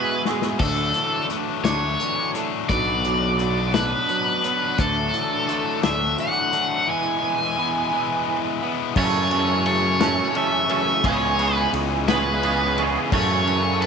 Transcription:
Already playing: G#3 B3 E4 F#4 G#4 B4 E5
0.25 G#3 B3 E4 F#4 G#4 E5, snare
0.42 snare
0.59 D2 D3 F#3 A3 D4 A4, kick, crash
0.94 E3, closed hi-hat
1.29 D3 F#3 A3 D4, closed hi-hat
1.64 D2 D3 F#3 A3 D4 C#5, snare, closed hi-hat
2.00 E3, closed hi-hat
2.34 F#3 A3 D4, closed hi-hat
2.69 B1 B2 F#3 B3 D4 D5, kick, closed hi-hat
3.04 F#3, closed hi-hat
3.39 B2 F#3 B3 D4, closed hi-hat
3.73 B2 F#3 B3 D4 B4, snare, closed hi-hat
4.09 F#3, closed hi-hat
4.43 F#3 B3 D4, closed hi-hat
4.77 D2 D3 F#3 A3 D4 A4, kick, closed hi-hat
5.14 E3, closed hi-hat
5.48 D3 F#3 A3 D4, closed hi-hat
5.82 D2 D3 F#3 A3 D4 E5, snare, closed hi-hat
6.18 E3 F#5, closed hi-hat
6.52 F#3 A3 D4, closed hi-hat
6.87 E3 G#3 B3 E4 G#5
7.22 E3
7.57 E3 G#3 B3 E4
7.92 E3 G#3 B3 E4
8.27 E3
8.61 G#3 B3 E4
8.96 F#2 C#3 E3 F#3 A3 C#4 A4 C#5 A6, kick, crash
9.30 F#2 C#3 E3 F#3 A3 C#4 A4, ride
9.66 C#5 A6, ride
9.99 F#2 C#3 E3 F#3 A3 C#4 A4, snare, ride
10.34 F#2 C#3 E3 F#3 A3 C#4 A4 E5 C#7, ride
10.69 F#2 C#3 E3 F#3 A3 C#4 A4 E5 C#7, ride
11.04 C#2 C#3 E3 G#3 B3 C#4 G#4 C#5 G#6, kick, ride
11.38 C#3 E3 G#3 B3 C#4 G#4, ride
11.55 B4
11.73 C#2, ride
12.08 C#3 E3 G#3 B3 C#4 G#4 B4 G#6, snare, ride
12.43 C#3 E3 G#3 B3 C#4 G#4, ride
12.78 C#3 E3 G#3 B3 C#4 G#4, ride
13.11 F#2 C#3 E3 F#3 A3 C#4 A4 C#5 A6, kick, crash
13.46 F#2 C#3 E3 F#3 A3 C#4 A4, ride
13.82 C#5 A6, ride

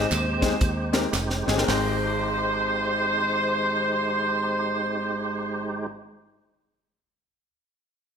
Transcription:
Already playing: G#2 G#3 C4 D#4 G4 C5
0.11 D#2, clap, closed hi-hat, tambourine
0.41 G#3 C4 D#4 G4 G#4, kick, snare, closed hi-hat, tambourine
0.61 D#2, kick, closed hi-hat, tambourine
0.92 G#3 C4 D#4 G4 A#4, snare, clap, closed hi-hat, tambourine
1.13 F1, snare, clap, tambourine
1.30 snare
1.46 G1 G#3 C4 D#4 G4 G#4, snare, tambourine
1.56 G#3 C4 D#4 G4 A#4, snare
1.64 G#1 G#3 C4
1.68 G#1 G#3 D#4 G4 C5, snare, clap, open hi-hat

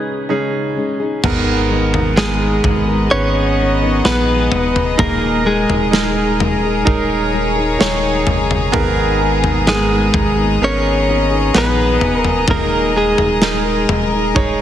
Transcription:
Already playing: C#3 G#3 C#4 D#4 G#4 B4
0.29 C#3 G#3 C#4 D#4 G#4
0.76 G#3 C#4 D#4 G#4
1.00 C#4 D#4 G#4
1.23 G#1 G#2 D#3 G#3 B3 D#4 G#4 A#4 D#5 A#5, kick, floor tom, crash
1.70 G#3 B3 D#4 A#4
1.94 G#3 B3 D#4 A#4, floor tom
2.16 G#2 D#3 G#3 B3 D#4 G#4 A#4, snare
2.41 G#3 B3 D#4 A#4
2.64 G#1 G#3 B3 D#4, kick, floor tom
2.68 A#4
2.88 G#3 B3 D#4 A#4
3.10 G#1 B3 C#4 G#4 B4 C#5
3.59 G#3 B3 D#4 A#4
3.82 G#3 B3 D#4 A#4
4.04 A#1 G#2 D#3 G#3 B3 D#4 G#4 B4, snare
4.51 E1 G#3 B3 D#4, floor tom
4.76 floor tom
4.97 D#1 A#2 D#3 G#3 A#3 D#4 G#4 A#4, kick, floor tom
5.45 G#3 D#4 G#4 A#4
5.69 D#1 D#4 G#4 A#4, floor tom
5.91 D#3 G#3 D#4 G#4 A#4, snare
6.16 D#4 G#4 A#4
6.39 G#3 D#4 G#4 A#4, floor tom
6.63 D#4 G#4 A#4
6.85 D#1 D#4 G#4 A#4 C#5, kick
7.32 G#3 D#4 G#4 A#4
7.56 D#4 G#4 A#4
7.79 D#1 D#3 G#3 D#4 G#4 A#4 C#5, snare
8.26 F#1 G#3 D#4 G#4 A#4, floor tom
8.51 floor tom
8.72 G#1 G#2 D#3 A#3 B3 D#4 G#4 A#4 D#5, kick, floor tom
9.20 A#3 B3 D#4 G#4
9.43 A#3 B3 D#4 G#4, floor tom
9.67 G#2 D#3 G#3 B3 D#4 G#4 A#4, snare
9.90 A#3 B3 D#4 G#4
10.13 G#1 A#3 B3 D#4 G#4, kick, floor tom
10.37 A#3 B3 D#4 G#4
10.60 G#1 B3 C#4 G#4 A#4
10.64 C#5
11.07 A#3 B3 D#4 G#4
11.31 A#3 B3 D#4 G#4
11.54 A#1 G#2 D#3 B3 D#4 G#4 B4, snare
11.58 B4
12.01 E1 B3 D#4 G#4, floor tom
12.18 A#4
12.25 floor tom
12.48 D#1 A#2 D#3 G#3 A#3 D#4 G#4 A#4, kick, floor tom
12.94 G#3 D#4 G#4 A#4
13.18 D#1 D#4 G#4 A#4, floor tom
13.41 D#3 G#3 D#4 G#4 A#4, snare
13.65 D#4 G#4 A#4
13.88 D#1 G#3 D#4 G#4 A#4, floor tom
14.12 D#4 G#4 A#4
14.35 D#1 D#4 G#4 C#5, kick

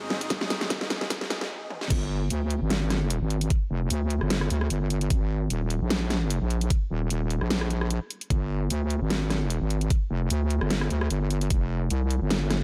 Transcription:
Already playing: G#2 D#3 C4 G#4 D#5
0.10 snare
0.21 closed hi-hat
0.30 kick, snare, closed hi-hat
0.41 snare
0.50 snare, closed hi-hat
0.61 snare, closed hi-hat
0.70 kick, snare, closed hi-hat
0.81 snare
0.90 snare, closed hi-hat
1.01 snare
1.10 kick, snare, closed hi-hat
1.21 snare
1.30 snare, closed hi-hat
1.41 snare
1.70 high tom
1.81 snare
1.90 G1, kick, closed hi-hat, crash
2.30 D2, closed hi-hat
2.50 closed hi-hat
2.61 G#1
2.70 snare, closed hi-hat
2.90 cross-stick, snare, closed hi-hat
3.10 closed hi-hat
3.21 G#1
3.30 closed hi-hat
3.41 closed hi-hat
3.50 kick, closed hi-hat
3.70 F1
3.90 D2, closed hi-hat
4.10 closed hi-hat
4.21 G1, cross-stick
4.30 snare, closed hi-hat
4.41 cross-stick
4.50 D2, closed hi-hat
4.61 cross-stick
4.70 G1, closed hi-hat
4.90 closed hi-hat
5.01 closed hi-hat
5.10 G#1, kick, closed hi-hat
5.50 D#1, closed hi-hat
5.70 closed hi-hat
5.81 A#1
5.90 snare, closed hi-hat
6.10 cross-stick, snare, closed hi-hat
6.30 closed hi-hat
6.41 A#1
6.50 closed hi-hat
6.61 closed hi-hat
6.70 kick, closed hi-hat
6.90 D#1
7.10 D#1, closed hi-hat
7.30 closed hi-hat
7.41 A#1, cross-stick
7.50 snare, closed hi-hat
7.61 cross-stick
7.70 closed hi-hat
7.81 cross-stick
7.90 closed hi-hat
8.10 closed hi-hat
8.21 closed hi-hat
8.30 G1, kick, closed hi-hat
8.70 D2, closed hi-hat
8.90 closed hi-hat
9.01 G#1
9.10 snare, closed hi-hat
9.30 cross-stick, snare, closed hi-hat
9.50 closed hi-hat
9.61 G#1
9.70 closed hi-hat
9.81 closed hi-hat
9.90 kick, closed hi-hat
10.10 F1
10.30 D2, closed hi-hat
10.50 closed hi-hat
10.61 G1, cross-stick
10.70 snare, closed hi-hat
10.81 cross-stick
10.90 D2, closed hi-hat
11.01 cross-stick
11.10 G1, closed hi-hat
11.30 closed hi-hat
11.41 closed hi-hat
11.50 F1, kick, closed hi-hat
11.90 C2, closed hi-hat
12.11 closed hi-hat
12.21 G1
12.30 snare, closed hi-hat
12.50 cross-stick, snare, closed hi-hat

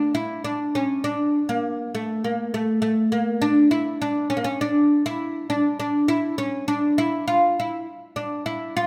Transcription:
Already playing: D4
0.15 E4
0.44 D4
0.75 C#4
1.04 D4
1.49 A#3
1.95 A3
2.24 A#3
2.54 A3
2.82 A3
3.12 A#3
3.42 D4
3.71 E4
4.02 D4
4.30 C#4
4.37 A#3
4.44 C#4
4.61 D4
5.06 E4
5.50 D4
5.80 D4
6.08 E4
6.38 C#4
6.68 D4
6.98 E4
7.28 F4
7.60 E4
8.16 D4
8.46 E4
8.77 F4

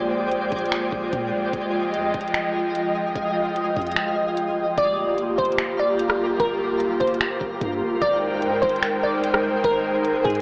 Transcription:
Already playing: A#1 G#3 A#3 F4 G4 C5 D5 G5
0.32 closed hi-hat
0.52 A#1, kick, closed hi-hat
0.59 closed hi-hat
0.66 closed hi-hat
0.72 finger snap, closed hi-hat
0.92 A#1, kick
1.13 A#2, kick, closed hi-hat
1.33 A#1
1.53 F1 F3 F4 D#5 G5, kick, closed hi-hat
1.94 F2, closed hi-hat
2.14 F1, kick, closed hi-hat
2.21 closed hi-hat
2.28 closed hi-hat
2.34 finger snap, closed hi-hat
2.75 closed hi-hat
2.85 G#1
3.15 F1, kick, closed hi-hat
3.56 closed hi-hat
3.76 F2, kick, closed hi-hat
3.81 closed hi-hat
3.87 closed hi-hat
3.92 closed hi-hat
3.96 finger snap, closed hi-hat
4.37 closed hi-hat
4.77 G1 G3 A#3 F4 G4 A#4 D5, kick, closed hi-hat
5.18 closed hi-hat
5.38 G1 C5, kick, closed hi-hat
5.45 closed hi-hat
5.52 closed hi-hat
5.58 finger snap, closed hi-hat
5.79 D5
5.99 closed hi-hat
6.09 cross-stick
6.40 G1 A#4, kick, closed hi-hat
6.80 closed hi-hat
7.00 G1 C5, kick, closed hi-hat
7.07 closed hi-hat
7.14 closed hi-hat
7.21 finger snap, closed hi-hat
7.41 G1, kick
7.61 G2, kick, closed hi-hat
7.82 G1
8.02 G#1 G#3 D#4 A#4 C5 D5 G5, kick, closed hi-hat
8.42 G#2, closed hi-hat
8.62 G#1 C5, kick, closed hi-hat
8.70 closed hi-hat
8.76 closed hi-hat
8.83 finger snap, closed hi-hat
9.03 D5
9.24 closed hi-hat
9.34 C2, cross-stick
9.64 G#1 A#4, kick, closed hi-hat
10.05 closed hi-hat
10.24 G#2 G#4, kick, closed hi-hat
10.30 closed hi-hat
10.35 closed hi-hat

